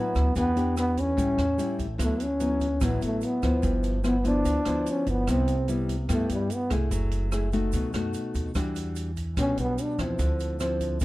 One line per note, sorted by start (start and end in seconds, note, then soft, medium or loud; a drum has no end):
0.00 0.34 A2 medium
0.00 0.34 F#3 medium
0.00 0.34 B3 medium
0.00 0.36 B3 medium
0.00 0.34 E4 medium
0.15 0.34 D2 medium
0.15 kick soft
0.15 cross-stick medium
0.15 closed hi-hat soft
0.15 shaker soft
0.36 1.14 E2 medium
0.36 1.16 E3 soft
0.36 0.53 B3 medium
0.36 0.75 B3 medium
0.36 0.53 D4 soft
0.36 0.53 G4 medium
0.36 kick medium
0.36 closed hi-hat medium
0.36 shaker medium
0.56 1.14 B3 medium
0.56 1.14 D4 medium
0.56 1.15 G4 medium
0.56 closed hi-hat soft
0.56 shaker soft
0.77 1.01 B3 medium
0.77 cross-stick medium
0.77 closed hi-hat soft
0.77 shaker medium
0.97 1.80 C#4 medium
0.97 kick soft
0.97 closed hi-hat soft
0.97 shaker soft
1.17 1.37 A1 medium
1.17 1.97 A2 medium
1.17 1.44 G3 soft
1.17 1.44 C#4 soft
1.17 1.44 E4 medium
1.17 kick medium
1.17 closed hi-hat medium
1.17 shaker medium
1.38 1.57 E2 medium
1.38 cross-stick medium
1.38 closed hi-hat soft
1.38 shaker soft
1.58 1.86 G3 medium
1.58 1.86 C#4 medium
1.58 1.86 E4 medium
1.58 closed hi-hat soft
1.58 shaker medium
1.79 1.98 A1 medium
1.79 kick soft
1.79 closed hi-hat soft
1.79 shaker soft
1.98 2.77 D2 medium
1.98 2.79 D3 soft
1.98 2.25 F#3 soft
1.98 2.26 B3 soft
1.98 2.26 E4 medium
1.98 kick medium
1.98 cross-stick medium
1.98 closed hi-hat medium
1.98 shaker medium
2.03 2.24 A3 medium
2.20 2.86 C#4 medium
2.20 closed hi-hat soft
2.20 shaker soft
2.40 2.67 F#3 medium
2.40 2.67 B3 soft
2.40 2.67 E4 medium
2.40 closed hi-hat soft
2.40 shaker medium
2.60 kick soft
2.60 closed hi-hat soft
2.60 shaker soft
2.81 3.01 A1 medium
2.81 3.61 A2 medium
2.81 3.39 F#3 medium
2.81 3.40 B3 medium
2.81 3.40 E4 medium
2.81 kick medium
2.81 cross-stick medium
2.81 closed hi-hat medium
2.81 shaker medium
2.85 3.04 B3 medium
3.02 3.21 A1 medium
3.02 3.26 A3 medium
3.02 closed hi-hat soft
3.02 shaker soft
3.21 3.65 B3 medium
3.21 closed hi-hat soft
3.21 shaker medium
3.42 3.62 D2 medium
3.42 4.01 F3 medium
3.42 4.01 B3 medium
3.42 4.01 E4 medium
3.42 kick soft
3.42 cross-stick medium
3.42 closed hi-hat soft
3.42 shaker soft
3.62 4.41 G1 loud
3.62 4.43 G2 medium
3.62 kick medium
3.62 closed hi-hat soft
3.62 shaker medium
3.83 closed hi-hat soft
3.83 shaker soft
4.03 4.16 F3 soft
4.03 4.16 B3 medium
4.03 4.25 B3 medium
4.03 4.16 E4 medium
4.03 cross-stick medium
4.03 closed hi-hat soft
4.03 shaker medium
4.24 4.62 F3 medium
4.24 4.62 B3 medium
4.24 4.92 D4 medium
4.24 4.63 E4 medium
4.24 kick soft
4.24 closed hi-hat soft
4.24 shaker soft
4.45 4.65 D2 medium
4.45 5.26 D3 medium
4.45 kick medium
4.45 closed hi-hat medium
4.45 shaker medium
4.65 4.85 D2 medium
4.65 5.24 F3 medium
4.65 5.24 B3 medium
4.65 5.24 E4 medium
4.65 cross-stick medium
4.65 closed hi-hat soft
4.65 shaker soft
4.86 closed hi-hat soft
4.86 shaker medium
4.91 5.09 C#4 medium
5.06 5.26 G1 medium
5.06 5.32 B3 medium
5.06 kick soft
5.06 closed hi-hat soft
5.06 shaker soft
5.27 6.05 C2 loud
5.27 6.08 C3 soft
5.27 5.54 G3 medium
5.27 5.54 B3 medium
5.27 5.70 C4 medium
5.27 5.55 E4 medium
5.27 kick medium
5.27 cross-stick medium
5.27 closed hi-hat medium
5.27 shaker medium
5.48 closed hi-hat soft
5.48 shaker soft
5.68 5.95 G3 medium
5.68 5.95 B3 medium
5.68 5.95 E4 medium
5.68 closed hi-hat soft
5.68 shaker medium
5.89 kick soft
5.89 closed hi-hat soft
5.89 shaker soft
6.09 6.89 G2 medium
6.09 6.28 G2 medium
6.09 6.50 G3 medium
6.09 6.30 A3 medium
6.09 6.50 B3 medium
6.09 6.50 E4 medium
6.09 kick medium
6.09 cross-stick medium
6.09 closed hi-hat medium
6.09 shaker medium
6.29 6.49 G2 medium
6.29 6.55 G3 medium
6.29 closed hi-hat soft
6.29 shaker soft
6.50 6.73 B3 medium
6.50 closed hi-hat soft
6.50 shaker medium
6.70 6.90 C2 medium
6.70 7.29 A3 medium
6.70 7.29 E4 medium
6.70 7.29 G#4 medium
6.70 kick soft
6.70 cross-stick medium
6.70 closed hi-hat soft
6.70 shaker soft
6.91 7.69 F#1 loud
6.91 7.53 F#3 medium
6.91 kick medium
6.91 closed hi-hat medium
6.91 shaker medium
7.11 closed hi-hat soft
7.11 shaker soft
7.32 7.49 A3 soft
7.32 7.50 E4 soft
7.32 7.50 G#4 medium
7.32 cross-stick medium
7.32 closed hi-hat soft
7.32 shaker medium
7.52 7.91 A3 medium
7.52 7.91 D#4 medium
7.52 7.91 F#4 medium
7.52 kick soft
7.52 closed hi-hat soft
7.52 shaker soft
7.72 7.92 B1 medium
7.72 8.53 B2 medium
7.72 kick medium
7.72 closed hi-hat medium
7.72 shaker medium
7.93 8.13 F#2 medium
7.93 8.52 A3 medium
7.93 8.53 D#4 medium
7.93 8.53 F#4 medium
7.93 cross-stick medium
7.93 closed hi-hat soft
7.93 shaker soft
8.14 closed hi-hat soft
8.14 shaker medium
8.34 8.54 D#2 medium
8.34 kick soft
8.34 closed hi-hat soft
8.34 shaker soft
8.54 9.33 E2 loud
8.54 9.35 E3 soft
8.54 9.10 G3 medium
8.54 9.11 D4 medium
8.54 9.11 F#4 medium
8.54 kick medium
8.54 cross-stick medium
8.54 closed hi-hat medium
8.54 shaker medium
8.75 closed hi-hat soft
8.75 shaker soft
8.96 closed hi-hat soft
8.96 shaker medium
9.16 kick soft
9.16 closed hi-hat soft
9.16 shaker soft
9.37 9.56 B1 medium
9.37 10.17 B2 medium
9.37 9.95 G3 medium
9.37 9.58 C#4 medium
9.37 9.96 D4 medium
9.37 9.96 F#4 medium
9.37 kick medium
9.37 cross-stick medium
9.37 closed hi-hat medium
9.37 shaker medium
9.57 9.77 B1 medium
9.57 9.84 B3 medium
9.57 closed hi-hat soft
9.57 shaker soft
9.78 closed hi-hat soft
9.78 shaker medium
9.82 10.01 D4 medium
9.98 10.18 E2 medium
9.98 10.57 F3 medium
9.98 10.57 C4 medium
9.98 10.57 E4 medium
9.98 kick soft
9.98 cross-stick medium
9.98 closed hi-hat soft
9.98 shaker soft
10.19 10.97 D2 medium
10.19 10.99 D3 medium
10.19 kick medium
10.19 closed hi-hat medium
10.19 shaker medium
10.40 closed hi-hat soft
10.40 shaker soft
10.60 10.99 F3 medium
10.60 10.99 C4 medium
10.60 11.00 E4 medium
10.60 cross-stick medium
10.60 closed hi-hat soft
10.60 shaker medium
10.81 kick soft
10.81 closed hi-hat soft
10.81 shaker soft
11.00 11.05 C#2 loud
11.00 11.05 C#3 medium
11.00 11.05 F3 medium
11.00 kick medium
11.00 closed hi-hat medium
11.00 shaker medium